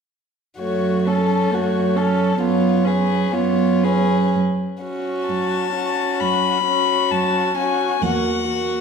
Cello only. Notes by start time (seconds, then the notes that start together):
0.59 F#2
1.52 F#2
2.38 F#2
3.31 F#2
4.35 F#2
5.29 F#2
6.21 F#2
7.11 F#2
8.02 E2